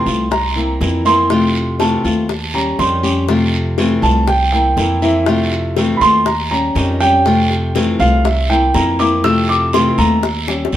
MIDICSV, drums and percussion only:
0, 0, Header, 1, 2, 480
1, 0, Start_track
1, 0, Key_signature, -1, "major"
1, 0, Tempo, 495868
1, 1263, Time_signature, 4, 2, 24, 8
1, 10421, End_track
2, 0, Start_track
2, 0, Title_t, "Drums"
2, 63, Note_on_c, 9, 73, 73
2, 67, Note_on_c, 9, 60, 36
2, 160, Note_off_c, 9, 73, 0
2, 164, Note_off_c, 9, 60, 0
2, 303, Note_on_c, 9, 74, 72
2, 307, Note_on_c, 9, 60, 70
2, 400, Note_off_c, 9, 74, 0
2, 404, Note_off_c, 9, 60, 0
2, 786, Note_on_c, 9, 73, 75
2, 788, Note_on_c, 9, 60, 37
2, 788, Note_on_c, 9, 61, 87
2, 883, Note_off_c, 9, 73, 0
2, 885, Note_off_c, 9, 60, 0
2, 885, Note_off_c, 9, 61, 0
2, 1022, Note_on_c, 9, 60, 32
2, 1025, Note_on_c, 9, 73, 71
2, 1119, Note_off_c, 9, 60, 0
2, 1122, Note_off_c, 9, 73, 0
2, 1260, Note_on_c, 9, 60, 73
2, 1263, Note_on_c, 9, 74, 69
2, 1357, Note_off_c, 9, 60, 0
2, 1360, Note_off_c, 9, 74, 0
2, 1502, Note_on_c, 9, 60, 33
2, 1599, Note_off_c, 9, 60, 0
2, 1739, Note_on_c, 9, 60, 65
2, 1741, Note_on_c, 9, 73, 72
2, 1836, Note_off_c, 9, 60, 0
2, 1838, Note_off_c, 9, 73, 0
2, 1982, Note_on_c, 9, 60, 37
2, 1985, Note_on_c, 9, 73, 70
2, 2079, Note_off_c, 9, 60, 0
2, 2082, Note_off_c, 9, 73, 0
2, 2220, Note_on_c, 9, 60, 66
2, 2226, Note_on_c, 9, 74, 77
2, 2317, Note_off_c, 9, 60, 0
2, 2323, Note_off_c, 9, 74, 0
2, 2700, Note_on_c, 9, 60, 38
2, 2700, Note_on_c, 9, 61, 85
2, 2705, Note_on_c, 9, 73, 74
2, 2797, Note_off_c, 9, 60, 0
2, 2797, Note_off_c, 9, 61, 0
2, 2802, Note_off_c, 9, 73, 0
2, 2939, Note_on_c, 9, 60, 32
2, 2946, Note_on_c, 9, 73, 71
2, 3036, Note_off_c, 9, 60, 0
2, 3043, Note_off_c, 9, 73, 0
2, 3181, Note_on_c, 9, 60, 73
2, 3187, Note_on_c, 9, 74, 69
2, 3277, Note_off_c, 9, 60, 0
2, 3284, Note_off_c, 9, 74, 0
2, 3420, Note_on_c, 9, 60, 34
2, 3517, Note_off_c, 9, 60, 0
2, 3657, Note_on_c, 9, 60, 67
2, 3663, Note_on_c, 9, 73, 71
2, 3754, Note_off_c, 9, 60, 0
2, 3760, Note_off_c, 9, 73, 0
2, 3899, Note_on_c, 9, 60, 36
2, 3902, Note_on_c, 9, 73, 73
2, 3996, Note_off_c, 9, 60, 0
2, 3998, Note_off_c, 9, 73, 0
2, 4139, Note_on_c, 9, 60, 68
2, 4142, Note_on_c, 9, 74, 74
2, 4236, Note_off_c, 9, 60, 0
2, 4239, Note_off_c, 9, 74, 0
2, 4620, Note_on_c, 9, 60, 36
2, 4620, Note_on_c, 9, 61, 93
2, 4624, Note_on_c, 9, 73, 72
2, 4717, Note_off_c, 9, 60, 0
2, 4717, Note_off_c, 9, 61, 0
2, 4721, Note_off_c, 9, 73, 0
2, 4859, Note_on_c, 9, 60, 33
2, 4861, Note_on_c, 9, 73, 67
2, 4956, Note_off_c, 9, 60, 0
2, 4958, Note_off_c, 9, 73, 0
2, 5096, Note_on_c, 9, 60, 78
2, 5100, Note_on_c, 9, 74, 72
2, 5193, Note_off_c, 9, 60, 0
2, 5197, Note_off_c, 9, 74, 0
2, 5341, Note_on_c, 9, 60, 36
2, 5437, Note_off_c, 9, 60, 0
2, 5581, Note_on_c, 9, 60, 62
2, 5584, Note_on_c, 9, 73, 71
2, 5677, Note_off_c, 9, 60, 0
2, 5681, Note_off_c, 9, 73, 0
2, 5821, Note_on_c, 9, 60, 33
2, 5822, Note_on_c, 9, 73, 72
2, 5918, Note_off_c, 9, 60, 0
2, 5919, Note_off_c, 9, 73, 0
2, 6058, Note_on_c, 9, 74, 70
2, 6059, Note_on_c, 9, 60, 70
2, 6155, Note_off_c, 9, 74, 0
2, 6156, Note_off_c, 9, 60, 0
2, 6541, Note_on_c, 9, 73, 69
2, 6545, Note_on_c, 9, 60, 39
2, 6545, Note_on_c, 9, 61, 90
2, 6638, Note_off_c, 9, 73, 0
2, 6642, Note_off_c, 9, 60, 0
2, 6642, Note_off_c, 9, 61, 0
2, 6781, Note_on_c, 9, 73, 69
2, 6785, Note_on_c, 9, 60, 32
2, 6878, Note_off_c, 9, 73, 0
2, 6882, Note_off_c, 9, 60, 0
2, 7020, Note_on_c, 9, 74, 71
2, 7026, Note_on_c, 9, 60, 69
2, 7117, Note_off_c, 9, 74, 0
2, 7123, Note_off_c, 9, 60, 0
2, 7266, Note_on_c, 9, 60, 35
2, 7363, Note_off_c, 9, 60, 0
2, 7502, Note_on_c, 9, 73, 69
2, 7507, Note_on_c, 9, 60, 64
2, 7599, Note_off_c, 9, 73, 0
2, 7604, Note_off_c, 9, 60, 0
2, 7740, Note_on_c, 9, 73, 72
2, 7746, Note_on_c, 9, 60, 35
2, 7837, Note_off_c, 9, 73, 0
2, 7842, Note_off_c, 9, 60, 0
2, 7982, Note_on_c, 9, 74, 70
2, 7987, Note_on_c, 9, 60, 74
2, 8079, Note_off_c, 9, 74, 0
2, 8084, Note_off_c, 9, 60, 0
2, 8464, Note_on_c, 9, 60, 38
2, 8464, Note_on_c, 9, 61, 91
2, 8465, Note_on_c, 9, 73, 73
2, 8561, Note_off_c, 9, 60, 0
2, 8561, Note_off_c, 9, 61, 0
2, 8562, Note_off_c, 9, 73, 0
2, 8704, Note_on_c, 9, 73, 67
2, 8709, Note_on_c, 9, 60, 32
2, 8800, Note_off_c, 9, 73, 0
2, 8806, Note_off_c, 9, 60, 0
2, 8944, Note_on_c, 9, 74, 72
2, 8946, Note_on_c, 9, 60, 75
2, 9040, Note_off_c, 9, 74, 0
2, 9043, Note_off_c, 9, 60, 0
2, 9191, Note_on_c, 9, 60, 37
2, 9288, Note_off_c, 9, 60, 0
2, 9422, Note_on_c, 9, 73, 73
2, 9429, Note_on_c, 9, 60, 66
2, 9518, Note_off_c, 9, 73, 0
2, 9526, Note_off_c, 9, 60, 0
2, 9660, Note_on_c, 9, 73, 74
2, 9666, Note_on_c, 9, 60, 37
2, 9757, Note_off_c, 9, 73, 0
2, 9763, Note_off_c, 9, 60, 0
2, 9899, Note_on_c, 9, 74, 72
2, 9905, Note_on_c, 9, 60, 69
2, 9996, Note_off_c, 9, 74, 0
2, 10002, Note_off_c, 9, 60, 0
2, 10145, Note_on_c, 9, 60, 88
2, 10242, Note_off_c, 9, 60, 0
2, 10308, Note_on_c, 9, 60, 95
2, 10381, Note_on_c, 9, 73, 75
2, 10404, Note_off_c, 9, 60, 0
2, 10421, Note_off_c, 9, 73, 0
2, 10421, End_track
0, 0, End_of_file